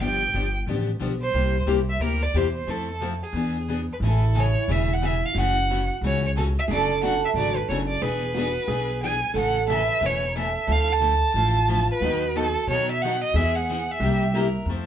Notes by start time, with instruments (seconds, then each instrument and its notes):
0.00 upright bass G1, steel-string acoustic guitar D3 F3 B3 D4 G4, violin G5
0.33 upright bass G1, steel-string acoustic guitar D3 F3 B3 D4 G4
0.67 upright bass A1, steel-string acoustic guitar D3 F3 B3 D4 G4
1.00 upright bass B1, steel-string acoustic guitar D3 F3 B3 D4 G4
1.22 violin C5
1.34 upright bass C2, steel-string acoustic guitar C3 G3 A#3 E4 G4
1.66 upright bass C2, steel-string acoustic guitar C3 G3 A#3 E4 G4
1.89 violin E5
2.00 upright bass D2, steel-string acoustic guitar C3 G3 A#3 E4 G4
2.04 violin A#4
2.23 violin D5
2.34 upright bass E2, steel-string acoustic guitar C3 G3 A#3 E4 G4, violin C5
2.55 violin C5
2.67 upright bass F2, steel-string acoustic guitar F3 A3 C4 E4 A4, violin A4
3.01 steel-string acoustic guitar F3 A3 C4 E4 A4
3.23 violin G#4
3.33 upright bass E2, steel-string acoustic guitar E3 B3 D4 G#4
3.68 steel-string acoustic guitar E3 B3 D4 G#4
3.93 violin B4
4.00 upright bass A1, steel-string acoustic guitar C#3 E3 A3 C#4 E4 G#4
4.06 violin A4
4.35 steel-string acoustic guitar C#3 E3 A3 C#4 G#4
4.40 violin C#5
4.68 upright bass E1, steel-string acoustic guitar C#3 E3 A3 C#4 G#4, violin E5
4.93 violin F#5
5.02 steel-string acoustic guitar C#3 E3 A3 C#4 G#4, violin E5
5.26 violin F5
5.34 upright bass F#1, steel-string acoustic guitar C#3 E3 A3 C#4 F#4
5.40 violin F#5
5.70 steel-string acoustic guitar C#3 E3 A3 C#4 F#4
6.01 upright bass C#2, steel-string acoustic guitar C#3 E3 A3 C#4 F#4
6.06 violin C#5
6.27 violin C#5
6.36 steel-string acoustic guitar C#3 E3 A3 C#4 F#4, violin A4
6.59 violin E5
6.68 upright bass F#1, steel-string acoustic guitar C#3 F#3 A3 D4 A4
6.72 steel-string acoustic guitar F#4, violin D5
7.02 steel-string acoustic guitar C#3 F#3 A3 D4 F#4, violin F#5
7.25 violin E5
7.34 upright bass G#1, steel-string acoustic guitar C#3 F#3 A3 F#4, violin D5
7.38 steel-string acoustic guitar D4
7.56 violin B4
7.68 upright bass F#1, steel-string acoustic guitar C#3 F#3 A3 D4 F#4, violin C#5
7.88 violin D5
8.02 upright bass E1, steel-string acoustic guitar E3 B3 D4 G#4, violin B4
8.34 steel-string acoustic guitar E3 B3 D4 F#4 G#4
8.68 upright bass B1, steel-string acoustic guitar E3 B3 D4 G#4
9.03 steel-string acoustic guitar E3 B3 D4 G#4, violin G#5
9.34 upright bass A1, steel-string acoustic guitar C#3 E3 A3 C#4 A4
9.39 violin F#5
9.68 steel-string acoustic guitar C#3 E3 A3 C#4 A4 B4, violin E5
10.01 upright bass E1, steel-string acoustic guitar C#3 E3 A3 C#4 A4
10.06 violin C#5
10.36 steel-string acoustic guitar C#3 E3 A3 C#4 A4, violin E5
10.67 upright bass D2, steel-string acoustic guitar D3 F3 A3 E4 A4
10.72 violin F5
10.93 violin A5
11.00 steel-string acoustic guitar D3 F3 A3 E4
11.34 upright bass A1, steel-string acoustic guitar D3 F3 A3 E4 F4
11.68 steel-string acoustic guitar D3 F3 A3 E4
11.91 violin B4
12.01 upright bass D#2, steel-string acoustic guitar D#3 F#3 B3 D#4 F#4 A4
12.35 steel-string acoustic guitar D#3 F#3 B3 D#4 A4, violin A4
12.67 upright bass B2, steel-string acoustic guitar D#3 F#3 B3 D#4, violin C#5
12.71 steel-string acoustic guitar A4
12.91 violin E5
13.02 steel-string acoustic guitar D#3 F#3 B3 D#4 A4, violin F#5
13.24 violin D#5
13.34 upright bass E2, steel-string acoustic guitar E3 G#3 B3 E4 G#4, violin E5
13.38 steel-string acoustic guitar G#4
13.56 violin F#5
13.70 steel-string acoustic guitar E3 G#3 B3 E4 G#4
13.91 violin E5
14.00 upright bass C2, steel-string acoustic guitar C3 G3 A#3 E4 G4
14.04 steel-string acoustic guitar G4
14.34 steel-string acoustic guitar C3 G3 A#3 E4 G4 A#4
14.66 upright bass F2, steel-string acoustic guitar F3 A3
14.70 steel-string acoustic guitar C4 E4 A4